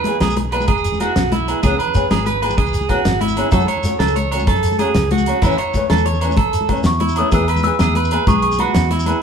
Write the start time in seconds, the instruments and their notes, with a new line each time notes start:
Already playing: clean electric guitar B4
0.04 steel-string acoustic guitar E3 B3 E4 G#4, closed hi-hat, muted conga
0.20 fingered electric bass B1, clean electric guitar G#4, snare, closed hi-hat, high conga, low conga, low agogo, shekere
0.30 shekere
0.37 muted clean electric guitar stroke, closed hi-hat, muted conga, shekere
0.45 low conga
0.52 steel-string acoustic guitar E3 B3 E4 G#4, clean electric guitar B4, closed hi-hat, low agogo
0.61 high conga, shekere
0.68 fingered electric bass E1, clean electric guitar G#4, kick, closed hi-hat, muted conga, low conga, low agogo
0.78 shekere
0.84 closed hi-hat, low conga, shekere
0.92 high conga, low conga
1.00 steel-string acoustic guitar E3 B3 E4 G#4, clean electric guitar F#4, closed hi-hat, muted conga, low conga, low agogo, shekere
1.16 fingered electric bass B1, snare, closed hi-hat, low conga, shekere
1.32 clean electric guitar E4, snare, closed hi-hat, muted conga, high conga
1.40 low conga
1.48 steel-string acoustic guitar E3 B3 E4 G#4, closed hi-hat, low agogo, shekere
1.56 low conga
1.63 fingered electric bass C#2, steel-string acoustic guitar E3 B3 C#4 G#4, clean electric guitar G#4, kick, closed hi-hat, muted conga, low conga, low agogo, shekere
1.72 high conga
1.79 clean electric guitar B4, closed hi-hat, low agogo
1.87 low conga
1.94 steel-string acoustic guitar E3 B3 C#4 G#4, kick, closed hi-hat, muted conga, shekere
2.10 fingered electric bass G#1, clean electric guitar G#4, snare, closed hi-hat, high conga, low conga, low agogo, shekere
2.25 clean electric guitar B4, closed hi-hat, muted conga, shekere
2.34 low conga
2.42 steel-string acoustic guitar E3 B3 G#4, clean electric guitar B4, closed hi-hat, low agogo
2.50 high conga, shekere
2.58 fingered electric bass C#2, clean electric guitar G#4, kick, closed hi-hat, muted conga, low conga, low agogo
2.66 shekere
2.73 closed hi-hat, shekere
2.81 high conga, low conga
2.89 steel-string acoustic guitar E3 B3 C#4 G#4, clean electric guitar F#4, kick, closed hi-hat, muted conga, low conga, low agogo, shekere
3.05 fingered electric bass G#1, snare, closed hi-hat, low conga, shekere
3.21 clean electric guitar E4, closed hi-hat, muted conga, high conga
3.28 low conga, shekere
3.36 steel-string acoustic guitar E3 B3 C#4 G#4, closed hi-hat, low agogo
3.46 low conga
3.51 fingered electric bass F#2, steel-string acoustic guitar A3 C#4 F#4, clean electric guitar A4, kick, closed hi-hat, muted conga, low conga, low agogo, shekere
3.60 high conga, shekere
3.68 clean electric guitar C#5, closed hi-hat, low agogo
3.77 low conga
3.83 steel-string acoustic guitar A3 C#4 F#4, closed hi-hat, muted conga, shekere
3.99 fingered electric bass C#2, clean electric guitar A4, snare, closed hi-hat, high conga, low conga, low agogo, shekere
4.07 shekere
4.16 clean electric guitar C#5, closed hi-hat, muted conga, shekere
4.25 low conga
4.31 steel-string acoustic guitar A3 C#4 F#4, clean electric guitar C#5, closed hi-hat, low agogo
4.39 high conga, shekere
4.47 fingered electric bass F#2, clean electric guitar A4, kick, closed hi-hat, muted conga, low conga, low agogo
4.56 shekere
4.63 closed hi-hat, low conga, shekere
4.72 high conga, low conga
4.79 steel-string acoustic guitar A3 C#4 F#4, clean electric guitar G#4, closed hi-hat, muted conga, low conga, low agogo, shekere
4.95 fingered electric bass C#2, snare, closed hi-hat, low conga, shekere
5.11 clean electric guitar F#4, snare, closed hi-hat, muted conga, high conga
5.18 low conga, shekere
5.26 steel-string acoustic guitar A3 C#4 F#4, closed hi-hat, low agogo, shekere
5.36 low conga
5.42 fingered electric bass A1, steel-string acoustic guitar E3 A3 C#4, clean electric guitar E4, kick, closed hi-hat, muted conga, low conga, low agogo, shekere
5.51 low conga, shekere
5.58 clean electric guitar C#5, closed hi-hat, low agogo
5.74 steel-string acoustic guitar E3 A3 C#4, kick, closed hi-hat, muted conga, shekere
5.83 low conga
5.90 fingered electric bass E2, clean electric guitar A4, snare, closed hi-hat, high conga, low conga, low agogo
5.97 low conga, shekere
6.06 clean electric guitar C#5, closed hi-hat, muted conga
6.13 low conga, shekere
6.21 steel-string acoustic guitar E3 A3 C#4, clean electric guitar C#5, closed hi-hat, low agogo, shekere
6.29 high conga, shekere
6.37 fingered electric bass A1, clean electric guitar A4, kick, closed hi-hat, muted conga, low conga, low agogo
6.46 low conga
6.53 closed hi-hat, low conga, shekere
6.61 high conga, low conga
6.69 steel-string acoustic guitar E3 A3 C#4, muted clean electric guitar stroke, kick, closed hi-hat, muted conga, low agogo
6.77 shekere
6.83 fingered electric bass E2, celesta C#6, snare, closed hi-hat, low conga, shekere
6.93 shekere
7.00 clean electric guitar E4, closed hi-hat, muted conga, high conga
7.08 low conga, shekere
7.16 steel-string acoustic guitar E3 A3 C#4, celesta D#6, closed hi-hat, low agogo
7.32 fingered electric bass E2, steel-string acoustic guitar E3 B3 E4 G#4, clean electric guitar G#4, celesta E6, kick, closed hi-hat, muted conga, low conga, low agogo, shekere
7.48 clean electric guitar B4, closed hi-hat, low agogo, shekere
7.56 high conga, low conga, shekere
7.63 steel-string acoustic guitar E3 B3 E4 G#4, celesta E6, closed hi-hat, muted conga
7.72 low conga
7.79 fingered electric bass E2, clean electric guitar G#4, snare, closed hi-hat, low conga, low agogo, shekere
7.88 high conga
7.95 clean electric guitar B4, closed hi-hat, muted conga
8.03 low conga, shekere
8.11 steel-string acoustic guitar E3 B3 E4 G#4, clean electric guitar B4, closed hi-hat, low agogo
8.27 fingered electric bass B1, clean electric guitar G#4, celesta C#6, kick, closed hi-hat, muted conga, high conga, low conga, low agogo, shekere
8.42 celesta C#6, closed hi-hat
8.51 low conga, shekere
8.59 steel-string acoustic guitar E3 B3 E4 G#4, clean electric guitar F#4, celesta B5, closed hi-hat, muted conga, low agogo
8.67 high conga
8.74 fingered electric bass E2, snare, closed hi-hat, low conga, shekere
8.91 clean electric guitar E4, snare, closed hi-hat, muted conga
8.98 low conga, shekere
9.06 steel-string acoustic guitar E3 B3 E4 G#4, celesta B5, closed hi-hat, high conga, low conga, low agogo